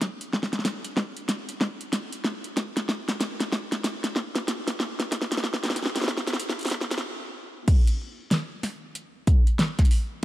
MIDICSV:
0, 0, Header, 1, 2, 480
1, 0, Start_track
1, 0, Tempo, 638298
1, 13, Time_signature, 4, 2, 24, 8
1, 7704, End_track
2, 0, Start_track
2, 0, Title_t, "Drums"
2, 11, Note_on_c, 9, 38, 82
2, 11, Note_on_c, 9, 42, 72
2, 12, Note_on_c, 9, 36, 113
2, 86, Note_off_c, 9, 38, 0
2, 86, Note_off_c, 9, 42, 0
2, 87, Note_off_c, 9, 36, 0
2, 157, Note_on_c, 9, 42, 51
2, 233, Note_off_c, 9, 42, 0
2, 250, Note_on_c, 9, 38, 75
2, 252, Note_on_c, 9, 36, 57
2, 322, Note_off_c, 9, 38, 0
2, 322, Note_on_c, 9, 38, 63
2, 327, Note_off_c, 9, 36, 0
2, 397, Note_off_c, 9, 38, 0
2, 397, Note_on_c, 9, 38, 56
2, 397, Note_on_c, 9, 42, 34
2, 443, Note_off_c, 9, 38, 0
2, 443, Note_on_c, 9, 38, 41
2, 472, Note_off_c, 9, 42, 0
2, 488, Note_off_c, 9, 38, 0
2, 488, Note_on_c, 9, 38, 83
2, 488, Note_on_c, 9, 42, 69
2, 563, Note_off_c, 9, 38, 0
2, 563, Note_off_c, 9, 42, 0
2, 636, Note_on_c, 9, 42, 51
2, 711, Note_off_c, 9, 42, 0
2, 727, Note_on_c, 9, 38, 85
2, 732, Note_on_c, 9, 36, 104
2, 802, Note_off_c, 9, 38, 0
2, 807, Note_off_c, 9, 36, 0
2, 877, Note_on_c, 9, 42, 34
2, 952, Note_off_c, 9, 42, 0
2, 968, Note_on_c, 9, 38, 89
2, 968, Note_on_c, 9, 42, 73
2, 1043, Note_off_c, 9, 38, 0
2, 1043, Note_off_c, 9, 42, 0
2, 1118, Note_on_c, 9, 42, 52
2, 1193, Note_off_c, 9, 42, 0
2, 1208, Note_on_c, 9, 38, 89
2, 1212, Note_on_c, 9, 36, 105
2, 1283, Note_off_c, 9, 38, 0
2, 1288, Note_off_c, 9, 36, 0
2, 1358, Note_on_c, 9, 42, 37
2, 1434, Note_off_c, 9, 42, 0
2, 1449, Note_on_c, 9, 38, 91
2, 1449, Note_on_c, 9, 42, 77
2, 1524, Note_off_c, 9, 38, 0
2, 1524, Note_off_c, 9, 42, 0
2, 1597, Note_on_c, 9, 42, 47
2, 1673, Note_off_c, 9, 42, 0
2, 1688, Note_on_c, 9, 38, 91
2, 1763, Note_off_c, 9, 38, 0
2, 1837, Note_on_c, 9, 42, 38
2, 1912, Note_off_c, 9, 42, 0
2, 1931, Note_on_c, 9, 38, 93
2, 1931, Note_on_c, 9, 42, 78
2, 1932, Note_on_c, 9, 36, 111
2, 2006, Note_off_c, 9, 38, 0
2, 2006, Note_off_c, 9, 42, 0
2, 2008, Note_off_c, 9, 36, 0
2, 2081, Note_on_c, 9, 38, 86
2, 2081, Note_on_c, 9, 42, 51
2, 2156, Note_off_c, 9, 38, 0
2, 2156, Note_off_c, 9, 42, 0
2, 2172, Note_on_c, 9, 36, 56
2, 2172, Note_on_c, 9, 38, 92
2, 2247, Note_off_c, 9, 36, 0
2, 2247, Note_off_c, 9, 38, 0
2, 2320, Note_on_c, 9, 38, 83
2, 2320, Note_on_c, 9, 42, 37
2, 2396, Note_off_c, 9, 38, 0
2, 2396, Note_off_c, 9, 42, 0
2, 2410, Note_on_c, 9, 38, 94
2, 2410, Note_on_c, 9, 42, 77
2, 2486, Note_off_c, 9, 38, 0
2, 2486, Note_off_c, 9, 42, 0
2, 2560, Note_on_c, 9, 38, 87
2, 2560, Note_on_c, 9, 42, 49
2, 2635, Note_off_c, 9, 38, 0
2, 2635, Note_off_c, 9, 42, 0
2, 2650, Note_on_c, 9, 38, 98
2, 2653, Note_on_c, 9, 36, 108
2, 2725, Note_off_c, 9, 38, 0
2, 2728, Note_off_c, 9, 36, 0
2, 2797, Note_on_c, 9, 38, 85
2, 2797, Note_on_c, 9, 42, 37
2, 2872, Note_off_c, 9, 38, 0
2, 2872, Note_off_c, 9, 42, 0
2, 2889, Note_on_c, 9, 38, 98
2, 2889, Note_on_c, 9, 42, 75
2, 2964, Note_off_c, 9, 38, 0
2, 2964, Note_off_c, 9, 42, 0
2, 3037, Note_on_c, 9, 38, 86
2, 3037, Note_on_c, 9, 42, 56
2, 3112, Note_off_c, 9, 38, 0
2, 3112, Note_off_c, 9, 42, 0
2, 3127, Note_on_c, 9, 38, 96
2, 3132, Note_on_c, 9, 36, 104
2, 3202, Note_off_c, 9, 38, 0
2, 3208, Note_off_c, 9, 36, 0
2, 3275, Note_on_c, 9, 38, 92
2, 3275, Note_on_c, 9, 42, 37
2, 3350, Note_off_c, 9, 38, 0
2, 3350, Note_off_c, 9, 42, 0
2, 3369, Note_on_c, 9, 38, 98
2, 3369, Note_on_c, 9, 42, 84
2, 3444, Note_off_c, 9, 38, 0
2, 3444, Note_off_c, 9, 42, 0
2, 3516, Note_on_c, 9, 38, 89
2, 3516, Note_on_c, 9, 42, 51
2, 3591, Note_off_c, 9, 38, 0
2, 3591, Note_off_c, 9, 42, 0
2, 3609, Note_on_c, 9, 38, 105
2, 3684, Note_off_c, 9, 38, 0
2, 3757, Note_on_c, 9, 38, 90
2, 3757, Note_on_c, 9, 42, 40
2, 3832, Note_off_c, 9, 38, 0
2, 3832, Note_off_c, 9, 42, 0
2, 3848, Note_on_c, 9, 38, 98
2, 3848, Note_on_c, 9, 42, 78
2, 3852, Note_on_c, 9, 36, 122
2, 3922, Note_off_c, 9, 38, 0
2, 3922, Note_on_c, 9, 38, 89
2, 3924, Note_off_c, 9, 42, 0
2, 3928, Note_off_c, 9, 36, 0
2, 3997, Note_off_c, 9, 38, 0
2, 3998, Note_on_c, 9, 38, 94
2, 3998, Note_on_c, 9, 42, 58
2, 4041, Note_off_c, 9, 38, 0
2, 4041, Note_on_c, 9, 38, 93
2, 4073, Note_off_c, 9, 42, 0
2, 4088, Note_off_c, 9, 38, 0
2, 4088, Note_on_c, 9, 38, 102
2, 4092, Note_on_c, 9, 36, 60
2, 4162, Note_off_c, 9, 38, 0
2, 4162, Note_on_c, 9, 38, 91
2, 4168, Note_off_c, 9, 36, 0
2, 4237, Note_off_c, 9, 38, 0
2, 4237, Note_on_c, 9, 38, 85
2, 4237, Note_on_c, 9, 42, 39
2, 4249, Note_off_c, 9, 38, 0
2, 4249, Note_on_c, 9, 38, 73
2, 4285, Note_off_c, 9, 38, 0
2, 4285, Note_on_c, 9, 38, 91
2, 4300, Note_off_c, 9, 38, 0
2, 4300, Note_on_c, 9, 38, 57
2, 4312, Note_off_c, 9, 42, 0
2, 4332, Note_off_c, 9, 38, 0
2, 4332, Note_on_c, 9, 38, 46
2, 4332, Note_on_c, 9, 42, 79
2, 4380, Note_off_c, 9, 38, 0
2, 4380, Note_on_c, 9, 38, 54
2, 4403, Note_off_c, 9, 38, 0
2, 4403, Note_on_c, 9, 38, 91
2, 4407, Note_off_c, 9, 42, 0
2, 4411, Note_off_c, 9, 38, 0
2, 4411, Note_on_c, 9, 38, 65
2, 4479, Note_off_c, 9, 38, 0
2, 4479, Note_on_c, 9, 38, 95
2, 4479, Note_on_c, 9, 42, 55
2, 4490, Note_off_c, 9, 38, 0
2, 4490, Note_on_c, 9, 38, 84
2, 4523, Note_off_c, 9, 38, 0
2, 4523, Note_on_c, 9, 38, 93
2, 4540, Note_off_c, 9, 38, 0
2, 4540, Note_on_c, 9, 38, 91
2, 4554, Note_off_c, 9, 42, 0
2, 4571, Note_off_c, 9, 38, 0
2, 4571, Note_on_c, 9, 38, 110
2, 4572, Note_on_c, 9, 36, 105
2, 4643, Note_off_c, 9, 38, 0
2, 4643, Note_on_c, 9, 38, 93
2, 4647, Note_off_c, 9, 36, 0
2, 4718, Note_off_c, 9, 38, 0
2, 4718, Note_on_c, 9, 38, 97
2, 4718, Note_on_c, 9, 42, 38
2, 4763, Note_off_c, 9, 38, 0
2, 4763, Note_on_c, 9, 38, 110
2, 4794, Note_off_c, 9, 42, 0
2, 4810, Note_on_c, 9, 42, 82
2, 4839, Note_off_c, 9, 38, 0
2, 4885, Note_off_c, 9, 42, 0
2, 4885, Note_on_c, 9, 38, 92
2, 4957, Note_on_c, 9, 42, 26
2, 4960, Note_off_c, 9, 38, 0
2, 4971, Note_off_c, 9, 42, 0
2, 4971, Note_on_c, 9, 42, 29
2, 4984, Note_off_c, 9, 42, 0
2, 4984, Note_on_c, 9, 42, 33
2, 5000, Note_off_c, 9, 42, 0
2, 5000, Note_on_c, 9, 42, 36
2, 5004, Note_on_c, 9, 38, 104
2, 5013, Note_off_c, 9, 42, 0
2, 5013, Note_on_c, 9, 42, 43
2, 5024, Note_off_c, 9, 42, 0
2, 5024, Note_on_c, 9, 42, 45
2, 5037, Note_off_c, 9, 42, 0
2, 5037, Note_on_c, 9, 42, 51
2, 5049, Note_off_c, 9, 38, 0
2, 5049, Note_on_c, 9, 38, 108
2, 5052, Note_on_c, 9, 36, 110
2, 5112, Note_off_c, 9, 42, 0
2, 5123, Note_off_c, 9, 38, 0
2, 5123, Note_on_c, 9, 38, 94
2, 5127, Note_off_c, 9, 36, 0
2, 5198, Note_off_c, 9, 38, 0
2, 5198, Note_on_c, 9, 38, 105
2, 5198, Note_on_c, 9, 42, 40
2, 5246, Note_off_c, 9, 38, 0
2, 5246, Note_on_c, 9, 38, 102
2, 5274, Note_off_c, 9, 42, 0
2, 5321, Note_off_c, 9, 38, 0
2, 5773, Note_on_c, 9, 36, 121
2, 5773, Note_on_c, 9, 42, 84
2, 5773, Note_on_c, 9, 49, 101
2, 5848, Note_off_c, 9, 36, 0
2, 5848, Note_off_c, 9, 42, 0
2, 5848, Note_off_c, 9, 49, 0
2, 5921, Note_on_c, 9, 42, 68
2, 5996, Note_off_c, 9, 42, 0
2, 6250, Note_on_c, 9, 38, 113
2, 6250, Note_on_c, 9, 42, 79
2, 6326, Note_off_c, 9, 38, 0
2, 6326, Note_off_c, 9, 42, 0
2, 6492, Note_on_c, 9, 40, 57
2, 6492, Note_on_c, 9, 46, 65
2, 6567, Note_off_c, 9, 40, 0
2, 6567, Note_off_c, 9, 46, 0
2, 6731, Note_on_c, 9, 42, 86
2, 6806, Note_off_c, 9, 42, 0
2, 6972, Note_on_c, 9, 42, 67
2, 6973, Note_on_c, 9, 36, 111
2, 7048, Note_off_c, 9, 42, 0
2, 7049, Note_off_c, 9, 36, 0
2, 7121, Note_on_c, 9, 42, 41
2, 7196, Note_off_c, 9, 42, 0
2, 7212, Note_on_c, 9, 38, 127
2, 7212, Note_on_c, 9, 42, 87
2, 7287, Note_off_c, 9, 38, 0
2, 7287, Note_off_c, 9, 42, 0
2, 7360, Note_on_c, 9, 40, 52
2, 7360, Note_on_c, 9, 42, 54
2, 7361, Note_on_c, 9, 36, 61
2, 7406, Note_off_c, 9, 42, 0
2, 7406, Note_on_c, 9, 42, 65
2, 7435, Note_off_c, 9, 40, 0
2, 7437, Note_off_c, 9, 36, 0
2, 7452, Note_on_c, 9, 46, 65
2, 7481, Note_off_c, 9, 42, 0
2, 7527, Note_off_c, 9, 46, 0
2, 7704, End_track
0, 0, End_of_file